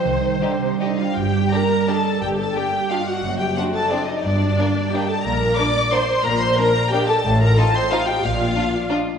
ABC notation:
X:1
M:3/4
L:1/8
Q:1/4=176
K:Cm
V:1 name="Violin section"
c4 e f | [K:Gm] g2 b2 a2 | g a g2 f ^f- | ^f g f a d e |
d4 g a | b2 d'2 c'2 | b c' b2 g a- | a b a c' f g |
f4 z2 |]
V:2 name="Viola section"
c4 E F | [K:Gm] G2 B2 A2 | G A G2 F ^F- | ^F G F A D E |
D4 G A | B2 d2 c2 | B c B2 G A- | A B A c F G |
F4 z2 |]
V:3 name="Harp"
[C,G,CEc] C G, E c G, | [K:Gm] G,, D B, d e d | G,, D B, d e d | ^F,, D C d e d |
G,, D B, d e d | B,, D B, d e d | B,, D B, d e d | A,, F C e f e |
B,, F B, d e d |]
V:4 name="Violin section"
z2 [EG]2 [EG]2 | [K:Gm] z2 [DG]2 [DG]2 | z2 [DG]2 [DG]2 | z2 [CD]2 [CD]2 |
z2 [B,D]2 [B,D]2 | z2 [B,D]2 [B,D]2 | z2 [B,D]2 [B,D]2 | z2 [EF]2 [EF]2 |
z2 [DF]2 [DF]2 |]
V:5 name="Cello section" clef=bass
E,2 D, C, D,2 | [K:Gm] G,,2 z4 | G,,2 z4 | ^F,,2 z4 |
G,,2 z4 | B,,2 z4 | B,,2 z4 | A,,2 z4 |
B,,2 z4 |]
V:6 name="Double bass section" clef=bass
C,,2 z4 | [K:Gm] G,,,2 z4 | G,,,2 z4 | ^F,,,2 z4 |
G,,,2 z4 | B,,,2 z4 | B,,,2 z4 | A,,,2 z4 |
B,,,2 z4 |]